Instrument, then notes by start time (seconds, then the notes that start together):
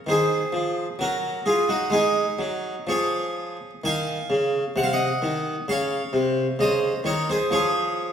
harpsichord
0.07 D#3 G#4 C5
0.53 F3
0.99 F#3 F#4 A#4
1.46 F4 G#4
1.69 D#4 F#4
1.90 G#3 D#4 G#4
2.39 F#3
2.87 F3 G#4 C#5
3.84 D#3 F5 G#5
4.30 C#3
4.76 C3 F#5
4.84 F5
4.93 D#5 F#5
5.22 D#3
5.68 C#3 C#5 F5
6.13 C3
6.59 C#3 C5 D#5
7.04 D#3 A#4 C#5
7.30 G#4 C5
7.51 F3 G#4 C#5